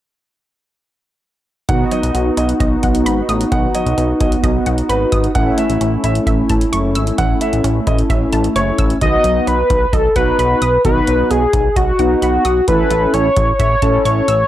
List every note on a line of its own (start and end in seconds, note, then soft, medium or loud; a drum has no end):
1.69 1.85 B1 medium
1.69 1.84 D#3 medium
1.69 5.31 B3 medium
1.69 5.31 D#4 medium
1.69 5.31 F#4 medium
1.69 1.86 F#5 medium
1.69 kick loud
1.69 closed hi-hat medium
1.91 2.07 F#3 medium
1.91 2.24 D#5 medium
1.91 closed hi-hat medium
2.03 2.11 B1 medium
2.03 closed hi-hat soft
2.14 2.30 B1 loud
2.14 2.30 B3 medium
2.14 closed hi-hat medium
2.37 2.53 B1 medium
2.37 2.53 D#4 medium
2.37 2.46 D#5 medium
2.37 closed hi-hat medium
2.49 closed hi-hat medium
2.60 2.76 B1 loud
2.60 2.76 D#5 medium
2.60 kick medium
2.60 closed hi-hat medium
2.83 3.08 B1 loud
2.83 2.99 F#5 medium
2.83 kick medium
2.83 closed hi-hat medium
2.95 closed hi-hat medium
3.06 3.22 G#1 medium
3.06 3.21 B5 medium
3.06 closed hi-hat medium
3.29 3.45 A1 medium
3.29 3.44 D#6 medium
3.29 closed hi-hat medium
3.41 closed hi-hat soft
3.52 3.68 B1 loud
3.52 3.67 D#3 medium
3.52 3.69 F#5 medium
3.52 kick loud
3.52 closed hi-hat medium
3.75 3.90 F#3 medium
3.75 4.07 D#5 medium
3.75 closed hi-hat medium
3.86 3.94 B1 medium
3.86 closed hi-hat soft
3.98 4.14 B1 loud
3.98 4.13 B3 medium
3.98 closed hi-hat medium
4.20 4.37 B1 medium
4.20 4.36 D#4 medium
4.20 4.29 D#5 medium
4.20 kick medium
4.20 closed hi-hat medium
4.32 closed hi-hat medium
4.43 4.59 B1 loud
4.43 4.59 D#5 medium
4.43 kick medium
4.43 closed hi-hat medium
4.66 4.82 B1 loud
4.66 4.82 F#5 medium
4.66 closed hi-hat medium
4.78 closed hi-hat medium
4.89 5.05 G#1 medium
4.89 5.22 B4 medium
4.89 5.05 B5 loud
4.89 closed hi-hat medium
5.12 5.28 G#1 medium
5.12 5.28 D#6 medium
5.12 kick medium
5.12 closed hi-hat medium
5.24 closed hi-hat soft
5.35 5.51 A1 loud
5.35 5.51 E3 medium
5.35 8.98 A3 medium
5.35 8.98 C#4 medium
5.35 8.98 E4 medium
5.35 5.52 F#5 loud
5.35 kick loud
5.35 closed hi-hat medium
5.58 5.73 A3 medium
5.58 5.90 E5 medium
5.58 closed hi-hat medium
5.69 5.77 A1 medium
5.69 closed hi-hat soft
5.81 5.97 A1 medium
5.81 5.96 C#4 medium
5.81 closed hi-hat medium
6.04 6.20 A1 medium
6.04 6.19 E4 medium
6.04 6.12 E5 medium
6.04 closed hi-hat medium
6.15 closed hi-hat medium
6.27 6.43 A1 loud
6.27 6.42 E5 medium
6.27 kick medium
6.27 closed hi-hat medium
6.49 6.66 A1 loud
6.49 6.65 A5 medium
6.49 kick medium
6.49 closed hi-hat medium
6.61 closed hi-hat medium
6.73 6.97 F#1 medium
6.73 6.88 C#6 loud
6.73 closed hi-hat medium
6.95 7.11 G#1 medium
6.95 7.11 E6 medium
6.95 closed hi-hat medium
7.07 closed hi-hat soft
7.18 7.34 A1 loud
7.18 7.34 E3 medium
7.18 7.36 F#5 medium
7.18 kick loud
7.18 closed hi-hat medium
7.41 7.57 A3 medium
7.41 7.74 E5 medium
7.41 closed hi-hat medium
7.53 7.61 A1 medium
7.53 closed hi-hat soft
7.64 7.80 A1 loud
7.64 7.79 C#4 medium
7.64 closed hi-hat medium
7.87 8.03 A1 medium
7.87 8.02 E4 medium
7.87 7.96 D#5 medium
7.87 kick medium
7.87 closed hi-hat medium
7.99 closed hi-hat medium
8.10 8.26 A1 loud
8.10 8.25 E5 medium
8.10 kick medium
8.10 closed hi-hat medium
8.33 8.49 A1 loud
8.33 8.48 A5 medium
8.33 closed hi-hat medium
8.44 closed hi-hat medium
8.56 8.72 F#1 medium
8.56 8.88 C#5 medium
8.56 8.71 C#6 medium
8.56 closed hi-hat medium
8.78 8.95 A1 medium
8.78 8.94 E6 medium
8.78 kick medium
8.78 closed hi-hat medium
8.90 closed hi-hat soft
9.01 9.18 B1 loud
9.01 9.17 D#3 medium
9.01 9.60 B3 medium
9.01 9.60 D#4 medium
9.01 9.60 F#4 medium
9.01 9.49 D#5 loud
9.01 kick loud
9.01 closed hi-hat medium
9.24 9.40 B1 loud
9.24 9.40 F#3 medium
9.24 closed hi-hat medium
9.47 9.63 B1 medium
9.47 9.63 B3 medium
9.47 9.95 B4 loud
9.47 closed hi-hat medium
9.70 9.86 B1 loud
9.70 9.86 D#4 medium
9.70 kick medium
9.70 closed hi-hat medium
9.93 10.09 B1 loud
9.93 10.15 A4 loud
9.93 10.09 D#5 medium
9.93 kick medium
9.93 closed hi-hat medium
10.16 10.32 B1 medium
10.16 10.60 B3 medium
10.16 10.60 D#4 medium
10.16 10.60 F#4 medium
10.16 10.37 B4 loud
10.16 10.31 F#5 medium
10.16 kick medium
10.16 closed hi-hat medium
10.39 10.55 B1 medium
10.39 10.82 B4 loud
10.39 10.54 B5 medium
10.39 closed hi-hat medium
10.62 10.78 B1 loud
10.62 10.77 D#6 medium
10.62 closed hi-hat medium
10.85 11.01 B1 loud
10.85 11.00 D#3 medium
10.85 11.44 B3 medium
10.85 11.44 D#4 medium
10.85 11.44 F#4 medium
10.85 11.32 B4 loud
10.85 kick loud
10.85 closed hi-hat medium
11.07 11.24 B1 loud
11.07 11.23 F#3 medium
11.07 closed hi-hat medium
11.30 11.47 B1 medium
11.30 11.46 B3 medium
11.30 11.76 G#4 medium
11.30 closed hi-hat medium
11.53 11.70 B1 medium
11.53 11.69 D#4 medium
11.53 kick medium
11.53 closed hi-hat medium
11.76 11.92 B1 loud
11.76 12.19 F#4 loud
11.76 11.92 D#5 medium
11.76 kick medium
11.76 closed hi-hat medium
11.99 12.15 B1 loud
11.99 12.43 B3 medium
11.99 12.43 D#4 medium
11.99 12.43 F#4 medium
11.99 12.15 F#5 medium
11.99 closed hi-hat medium
12.22 12.38 B1 medium
12.22 12.65 F#4 medium
12.22 12.38 B5 medium
12.22 closed hi-hat medium
12.45 12.61 B1 medium
12.45 12.60 D#6 medium
12.45 closed hi-hat medium
12.68 12.84 A1 loud
12.68 12.83 E3 medium
12.68 13.27 C#4 medium
12.68 13.27 E4 medium
12.68 13.27 A4 medium
12.68 13.15 B4 loud
12.68 kick loud
12.68 closed hi-hat medium
12.91 13.07 A1 medium
12.91 13.06 A3 medium
12.91 closed hi-hat medium
13.14 13.30 A1 medium
13.14 13.29 C#4 medium
13.14 13.59 C#5 loud
13.14 closed hi-hat medium
13.37 13.53 A1 loud
13.37 13.52 E4 medium
13.37 kick loud
13.37 closed hi-hat medium
13.59 13.76 A1 loud
13.59 14.02 C#5 loud
13.59 13.75 E5 medium
13.59 kick medium
13.59 closed hi-hat medium
13.82 13.98 A1 loud
13.82 14.27 C#4 medium
13.82 14.27 E4 medium
13.82 14.27 A4 medium
13.82 13.98 A5 medium
13.82 kick medium
13.82 closed hi-hat medium
14.05 14.21 A1 loud
14.05 14.48 C#5 medium
14.05 14.21 C#6 loud
14.05 closed hi-hat medium
14.28 14.44 A1 medium
14.28 14.44 E6 medium
14.28 closed hi-hat medium